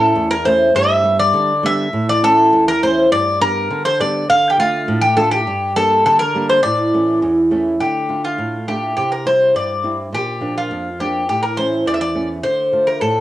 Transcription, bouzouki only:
Already playing: A4
0.31 A#4
0.45 C5
0.76 E5
1.19 D5
1.66 E5
2.09 D5
2.24 A4
2.68 A#4
2.83 C5
3.12 D5
3.41 A#4
3.85 C5
4.01 D5
4.30 F5
4.50 G4
4.60 F4
5.02 G4
5.17 A4
5.31 G4
5.76 A4
6.06 A4
6.19 A#4
6.50 C5
6.63 D5
7.80 G4
8.24 F4
8.68 G4
8.97 G4
9.12 A#4
9.27 C5
9.56 D5
10.14 G4
10.58 F4
11.00 G4
11.29 G4
11.43 A#4
11.57 C5
11.87 D5
11.94 E5
12.01 D5
12.43 C5
12.87 A#4
13.01 A4

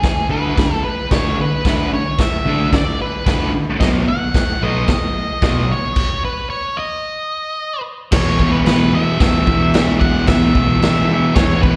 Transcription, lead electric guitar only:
Already playing: G#4
0.31 B4
0.84 B4
1.12 C#5
1.41 B4
1.94 C#5
2.21 E5
2.75 D5
3.02 B4
3.80 D#5
4.08 F#5
4.64 D#5
5.72 C#5
6.25 B4
6.50 C#5
6.77 D#5
8.14 C#5
8.52 B4
8.66 B4
8.94 E5
10.00 F#5
10.28 E5
11.36 C#5
11.62 B4

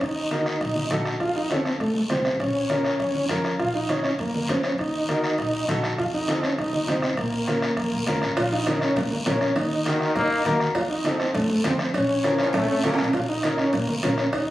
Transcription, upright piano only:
0.31 D#4 F#4 A#4
0.91 D#4 F#4 A4
1.51 C4 F4 A4
2.10 C4 F4 C5
2.70 C#4 F4 A#4
3.29 C#4 F4 A#4
3.89 C#4 F4 C#5
4.49 C#4 F4 C5
5.09 D#4 F#4 A#4
5.69 D#4 F#4 A4
6.29 C4 F4 A4
6.88 C4 F4 C5
7.47 C#4 F4 A#4
8.08 C#4 F4 A#4
8.67 C#4 F4 A#4
9.26 C#4 F4 A#4
9.86 D#4 F#4 A#4
10.46 D#4 F#4 A#4
11.05 C4 F4 A4
11.65 C4 F4 C5
12.24 C#4 F4 A#4
12.84 C#4 F4 A4
13.43 C#4 F4 A#4
14.03 C#4 F4 A#4

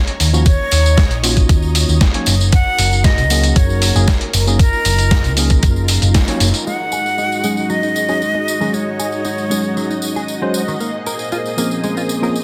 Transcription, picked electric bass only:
0.20 D#2
0.72 D#2
1.11 A#1
1.49 D#2
1.89 D#2
2.27 F#1
2.79 F#1
3.18 C#2
3.56 F#1
3.95 F#1
4.34 F#1
4.85 F#1
5.25 C#2
5.63 F#1
6.02 F#1
6.40 F#1

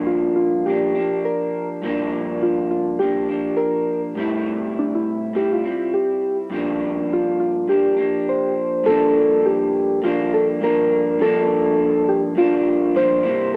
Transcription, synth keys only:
0.07 F4
0.36 F4
0.66 G4
1.25 A#4
2.43 F4
2.71 F4
2.99 G4
3.57 A#4
4.79 D4
4.95 E4
5.36 G4
5.53 F4
5.94 G4
7.13 F4
7.40 F4
7.69 G4
8.29 C5
8.86 A4
9.46 G4
10.04 F4
10.34 A4
10.64 A#4
11.22 A4
12.09 G4
12.38 F4
12.96 C5

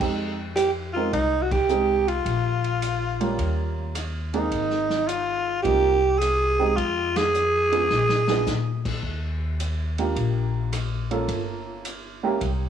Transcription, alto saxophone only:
0.56 G4
0.93 F4
1.13 D#4
1.42 F#4
1.52 G4
2.08 F4
4.34 D#4
5.08 F4
5.62 G4
6.19 G#4
6.76 F4
7.17 G#4

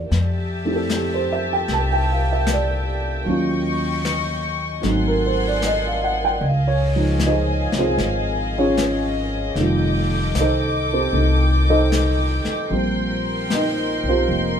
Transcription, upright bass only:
0.11 F2
1.69 C2
3.26 D#2
4.84 G#1
6.41 C#2
7.73 C2
7.98 G#1
9.55 F1
10.34 C2
11.13 C2
12.46 muted upright bass stroke
12.70 A#1
14.04 B1
14.29 F1

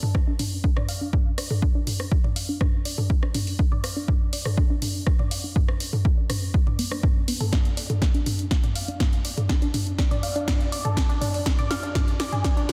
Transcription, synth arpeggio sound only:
0.03 A4
0.15 D4
0.27 D4
0.39 D4
0.64 D4
0.77 D5
0.89 F5
1.01 D4
1.13 D4
1.38 D5
1.50 A4
1.62 D4
1.75 D4
1.87 D4
2.11 D4
2.24 D5
2.36 F5
2.49 D4
2.61 D4
2.85 D5
2.98 A4
3.10 D4
3.23 D4
3.35 D4
3.59 D4
3.72 D5
3.84 F5
3.96 D4
4.08 D4
4.33 D5
4.46 A4
4.58 D4
4.70 D4
4.82 D4
5.07 D4
5.19 D5
5.31 F5
5.44 D4
5.56 D4
5.80 D5
5.93 A4
6.05 D4
6.18 D4
6.30 D4
6.54 D4
6.67 D5
6.79 B3
6.91 D4
7.03 D4
7.28 B3
7.40 A4
7.52 D4
7.77 D5
7.90 A4
8.02 D4
8.14 D4
8.26 D4
8.51 D4
8.64 D5
8.76 F5
8.88 D4
9.00 D4
9.25 D5
9.37 A4
9.49 D4
9.62 D4
9.74 D4
9.98 D4
10.11 D5
10.23 F5
10.36 D4
10.48 D4
10.72 D5
10.85 A4
10.97 D4
11.09 D4
11.21 D4
11.46 D4
11.59 D5
11.70 F5
11.83 D4
11.95 D4
12.20 D5
12.32 G#4
12.44 D4
12.57 D4
12.69 D4

